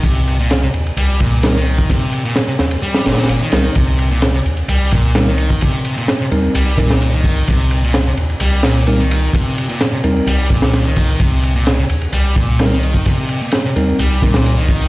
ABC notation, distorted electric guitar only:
X:1
M:4/4
L:1/16
Q:1/4=129
K:Cm
V:1 name="Distorted electric guitar" clef=bass
C,3 B,, z C, z2 G,2 B,,3 E,3 | C,3 B,, z C, z2 G,2 B,,3 E,3 | C,3 B,, z C, z2 G,2 B,,3 E,3 | C,3 B,, z C, z2 G,2 B,,3 E,3 |
C,3 B,, z C, z2 G,2 B,,3 E,3 | C,3 B,, z C, z2 G,2 B,,3 E,3 | C,3 B,, z C, z2 G,2 B,,3 E,3 | C,3 B,, z C, z2 G,2 B,,3 E,3 |]